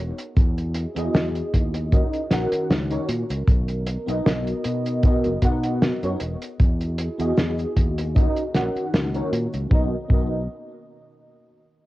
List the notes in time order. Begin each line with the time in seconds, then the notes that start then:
Already playing: E1 D#5
0.00 E4 F#4 G#4
0.18 closed hi-hat, cabasa
0.36 E2, kick, closed hi-hat, cabasa
0.58 closed hi-hat, cabasa
0.74 closed hi-hat
0.95 E2 B3 E4 F#4 G#4 D#5, closed hi-hat, cabasa
1.14 E2, snare, closed hi-hat, cabasa
1.35 closed hi-hat, cabasa
1.54 D#2, kick, closed hi-hat
1.74 closed hi-hat, cabasa
1.92 D#3 C#4 D#4 F#4 A#4 D#5, kick, closed hi-hat, cabasa
2.13 closed hi-hat, cabasa
2.30 A#1 C#4 D#4 F#4 A#4 F#5, snare, closed hi-hat
2.52 muted fingered electric bass stroke, closed hi-hat, cabasa
2.70 C#2, snare, closed hi-hat, cabasa
2.90 C#4 D#4 F#4 A#4 C#5, closed hi-hat, cabasa
3.09 A#2, closed hi-hat
3.30 C#2, closed hi-hat, cabasa
3.47 B1 B3 D#5, kick, closed hi-hat, cabasa
3.68 closed hi-hat, cabasa
3.87 closed hi-hat
4.06 B1 B3 D#4 F#4 A#4 D#5, closed hi-hat, cabasa
4.26 B1, snare, closed hi-hat, cabasa
4.47 closed hi-hat, cabasa
4.64 B2, closed hi-hat
4.86 closed hi-hat, cabasa
5.03 B3 D#4 F#4 A#4 D#5, kick, closed hi-hat, cabasa
5.24 F#1, closed hi-hat, cabasa
5.42 B2 B3 D#4 F#4 A#4 F#5, kick, closed hi-hat
5.63 closed hi-hat, cabasa
5.82 snare, closed hi-hat, cabasa
6.02 F#2 B3 D#4 F#4 A#4 C#5, closed hi-hat, cabasa
6.20 E1 E4 F#4 G#4, closed hi-hat
6.42 closed hi-hat, cabasa
6.60 E2, kick, closed hi-hat, cabasa
6.81 closed hi-hat, cabasa
6.98 closed hi-hat
7.18 E2 B3 E4 F#4 G#4 D#5, closed hi-hat, cabasa
7.37 E2, snare, closed hi-hat, cabasa
7.58 closed hi-hat, cabasa
7.76 D#2, kick, closed hi-hat
7.98 closed hi-hat, cabasa
8.15 D#3 A#3 C#4 D#4 F#4 A#4 D#5, kick, closed hi-hat, cabasa
8.36 closed hi-hat, cabasa
8.54 A#1 C#4 D#4 F#4 A#4 F#5, snare, closed hi-hat
8.76 muted fingered electric bass stroke, closed hi-hat, cabasa
8.94 C#2, snare, closed hi-hat, cabasa
9.14 C#4 D#4 F#4 A#4 C#5, closed hi-hat, cabasa
9.32 A#2, closed hi-hat
9.53 C#2, closed hi-hat, cabasa
9.70 B1 B3 D#4 F#4 A#4, kick
9.74 D#5
10.08 B1 B3 D#4 F#4 A#4, kick
10.13 D#5